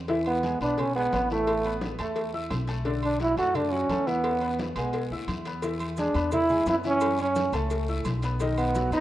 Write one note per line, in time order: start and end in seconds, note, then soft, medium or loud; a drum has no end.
0.00 0.54 E2 medium
0.08 0.37 E3 medium
0.08 0.37 E4 medium
0.08 0.38 E5 medium
0.08 cowbell loud
0.08 high conga soft
0.08 low agogo medium
0.08 long guiro medium
0.26 0.58 B3 medium
0.26 high conga soft
0.26 low agogo loud
0.43 0.57 G#3 medium
0.43 0.58 G#4 medium
0.43 0.58 G#5 medium
0.43 cowbell medium
0.43 high conga medium
0.43 short guiro medium
0.60 1.09 B1 medium
0.60 0.89 B3 medium
0.60 0.81 D4 loud
0.60 0.89 B4 medium
0.60 0.89 B5 medium
0.60 high conga soft
0.60 low agogo medium
0.60 short guiro medium
0.78 0.95 C#4 loud
0.78 cowbell loud
0.78 high conga soft
0.78 low conga medium
0.78 low agogo loud
0.78 long guiro medium
0.95 1.10 G#3 medium
0.95 1.28 B3 loud
0.95 1.10 G#4 medium
0.95 1.10 G#5 medium
0.95 high conga soft
1.12 1.94 A1 medium
1.12 1.27 B3 medium
1.12 1.27 B4 medium
1.12 1.27 B5 medium
1.12 cowbell medium
1.12 high conga medium
1.12 low timbale medium
1.12 low agogo medium
1.12 short guiro medium
1.30 1.59 E3 medium
1.30 1.79 A3 loud
1.30 1.59 E4 medium
1.30 1.59 E5 medium
1.30 short guiro medium
1.47 cowbell loud
1.47 high conga soft
1.47 low agogo loud
1.47 long guiro medium
1.65 1.93 B3 medium
1.65 1.94 B4 medium
1.65 1.94 B5 medium
1.65 high conga soft
1.65 low agogo medium
1.81 cowbell medium
1.81 high conga loud
1.81 short guiro medium
1.99 2.48 E2 medium
1.99 2.28 A3 medium
1.99 2.32 A3 medium
1.99 2.28 A4 medium
1.99 2.28 A5 medium
1.99 cowbell medium
1.99 high conga soft
1.99 low agogo loud
1.99 short guiro medium
2.16 cowbell loud
2.16 high conga soft
2.16 low agogo medium
2.16 long guiro medium
2.34 2.62 E4 medium
2.34 2.62 E5 medium
2.34 2.63 E6 medium
2.34 high conga soft
2.51 3.32 B1 medium
2.51 cowbell medium
2.51 high conga medium
2.51 low timbale medium
2.51 low agogo loud
2.51 short guiro medium
2.67 2.82 A3 medium
2.67 2.83 A4 medium
2.67 2.83 A5 medium
2.67 cowbell medium
2.67 high conga soft
2.67 low agogo medium
2.67 short guiro medium
2.85 3.14 D3 medium
2.85 3.14 D4 medium
2.85 3.15 D5 medium
2.85 cowbell loud
2.85 high conga soft
2.85 low agogo medium
2.85 long guiro medium
3.03 3.20 D4 loud
3.03 high conga soft
3.03 low agogo loud
3.20 3.35 F#3 medium
3.20 3.37 E4 loud
3.20 3.35 F#4 medium
3.20 3.35 F#5 medium
3.20 cowbell medium
3.20 high conga medium
3.20 short guiro medium
3.37 3.86 F#2 medium
3.37 3.66 A3 medium
3.37 3.57 F#4 loud
3.37 3.66 A4 medium
3.37 3.67 A5 medium
3.37 high conga soft
3.37 low agogo medium
3.37 short guiro medium
3.55 3.73 D4 loud
3.55 cowbell loud
3.55 high conga soft
3.55 low conga medium
3.55 low agogo loud
3.55 long guiro medium
3.72 3.87 F#3 medium
3.72 4.09 C#4 loud
3.72 3.87 F#4 medium
3.72 3.87 F#5 medium
3.72 high conga soft
3.89 4.71 E2 medium
3.89 4.04 A3 medium
3.89 4.04 A4 medium
3.89 4.04 A5 medium
3.89 cowbell medium
3.89 high conga medium
3.89 low agogo medium
3.89 short guiro medium
4.07 4.36 E3 loud
4.07 4.59 B3 loud
4.07 4.36 E4 loud
4.07 4.36 E5 medium
4.07 short guiro medium
4.24 cowbell loud
4.24 high conga soft
4.24 low agogo loud
4.24 long guiro medium
4.41 4.70 B3 medium
4.41 4.70 B4 medium
4.41 4.71 B5 medium
4.41 high conga soft
4.41 low agogo medium
4.59 cowbell medium
4.59 high conga loud
4.59 short guiro medium
4.76 5.08 B1 medium
4.76 5.05 G#3 medium
4.76 5.09 B3 medium
4.76 5.06 G#4 medium
4.76 5.06 G#5 medium
4.76 cowbell medium
4.76 high conga soft
4.76 low agogo loud
4.76 short guiro medium
4.93 cowbell loud
4.93 high conga soft
4.93 low agogo medium
4.93 long guiro medium
5.11 5.27 D2 medium
5.11 5.40 E4 medium
5.11 5.40 E5 medium
5.11 5.40 E6 medium
5.11 high conga soft
5.28 6.09 E2 medium
5.28 cowbell medium
5.28 high conga medium
5.28 low agogo loud
5.28 short guiro medium
5.45 5.60 B3 medium
5.45 5.60 B4 medium
5.45 5.61 B5 medium
5.45 cowbell medium
5.45 high conga soft
5.45 low agogo medium
5.45 short guiro medium
5.62 5.92 E3 medium
5.62 5.92 E4 medium
5.62 5.92 E5 medium
5.62 cowbell loud
5.62 high conga soft
5.62 low agogo medium
5.62 long guiro medium
5.62 maracas medium
5.80 high conga soft
5.80 low agogo loud
5.80 maracas soft
5.97 6.12 G#3 medium
5.97 6.31 D4 loud
5.97 6.12 G#4 medium
5.97 6.13 G#5 medium
5.97 cowbell medium
5.97 high conga medium
5.97 short guiro medium
5.97 maracas medium
6.14 6.63 E2 medium
6.14 6.43 B3 medium
6.14 6.44 B4 medium
6.14 6.44 B5 medium
6.14 high conga soft
6.14 low agogo loud
6.14 short guiro medium
6.14 maracas soft
6.32 6.65 E4 loud
6.32 cowbell loud
6.32 high conga soft
6.32 low conga medium
6.32 low agogo loud
6.32 long guiro medium
6.32 maracas medium
6.49 6.64 G#3 medium
6.49 6.64 G#4 medium
6.49 6.64 G#5 medium
6.49 high conga soft
6.49 low conga medium
6.49 maracas soft
6.66 7.48 F#2 medium
6.66 6.81 B3 medium
6.66 6.76 E4 loud
6.66 6.82 B4 medium
6.66 6.82 B5 medium
6.66 cowbell medium
6.66 high conga medium
6.66 low timbale medium
6.66 low agogo medium
6.66 short guiro medium
6.66 maracas medium
6.83 7.13 E3 medium
6.83 7.18 C#4 loud
6.83 7.13 E4 medium
6.83 7.13 E5 medium
6.83 short guiro medium
6.83 maracas soft
7.01 cowbell loud
7.01 high conga soft
7.01 low agogo loud
7.01 long guiro medium
7.01 maracas medium
7.18 7.48 C#4 medium
7.18 7.57 C#4 loud
7.18 7.48 C#5 medium
7.18 7.48 C#6 medium
7.18 high conga soft
7.18 low agogo medium
7.18 maracas soft
7.35 cowbell medium
7.35 high conga loud
7.35 short guiro medium
7.35 maracas medium
7.52 8.01 C#2 medium
7.52 7.82 A3 medium
7.52 8.07 A3 medium
7.52 7.82 A4 medium
7.52 7.82 A5 medium
7.52 cowbell medium
7.52 high conga soft
7.52 low agogo loud
7.52 short guiro medium
7.52 maracas soft
7.70 cowbell loud
7.70 high conga soft
7.70 low agogo medium
7.70 long guiro medium
7.70 maracas medium
7.88 8.17 E4 medium
7.88 8.17 E5 medium
7.88 8.17 E6 medium
7.88 high conga soft
7.88 maracas soft
8.05 8.86 B1 loud
8.05 cowbell medium
8.05 high conga medium
8.05 low agogo loud
8.05 short guiro medium
8.05 maracas medium
8.22 8.38 B3 medium
8.22 8.38 B4 medium
8.22 8.38 B5 medium
8.22 cowbell medium
8.22 high conga soft
8.22 low agogo medium
8.22 short guiro medium
8.22 maracas soft
8.40 8.69 D#3 medium
8.40 8.70 D#4 medium
8.40 8.70 D#5 medium
8.40 cowbell loud
8.40 high conga soft
8.40 low agogo medium
8.40 long guiro medium
8.40 maracas medium
8.57 8.90 B3 loud
8.57 high conga soft
8.57 low agogo loud
8.57 maracas soft
8.75 8.89 F#3 medium
8.75 8.90 F#4 medium
8.75 8.90 F#5 medium
8.75 cowbell medium
8.75 high conga medium
8.75 short guiro medium
8.75 maracas medium
8.91 9.00 F#2 medium
8.91 9.00 B3 medium
8.91 9.00 D#4 loud
8.91 9.00 B4 medium
8.91 9.00 B5 medium
8.91 high conga soft
8.91 low agogo medium
8.91 short guiro medium
8.91 maracas soft